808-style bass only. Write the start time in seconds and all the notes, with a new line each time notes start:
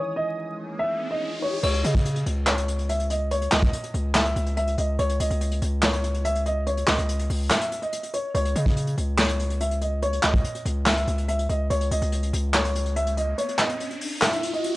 1.63 C#2
1.84 C#3
2.26 C#2
3.52 C#2
3.94 C#2
4.36 C#2
4.78 C#2
4.99 C#2
5.20 C#2
5.30 C#2
5.62 C#2
6.88 C#2
6.98 C#2
7.30 C#2
8.35 C#2
8.56 C#3
8.98 C#2
10.23 C#2
10.65 C#2
11.07 C#2
11.49 C#2
11.70 C#2
11.91 C#2
12.02 C#2
12.33 C#2